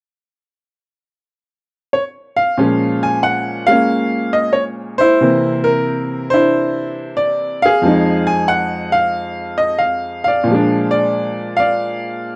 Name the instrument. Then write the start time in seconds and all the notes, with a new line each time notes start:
upright piano
1.93 C#5
2.36 F5
2.57 A#2 F3 G#3 C#4
3.03 G#5
3.23 F#5
3.67 G#3 A#3 F5
3.71 C#4
4.33 D#5
4.53 C#5
4.98 E4 C5
5.21 C3 E3 A#3 C4
5.64 A#4
6.30 D4 E4 C5
7.17 D5
7.62 G#4 F5
7.82 F2 F3 G#3
7.87 D#4
8.27 G#5
8.48 F#5
8.92 F5
9.58 D#5
9.78 F5
10.24 D5 F5
10.44 A#2 F3
10.51 G#3 D4
10.91 D5
11.57 D5 F5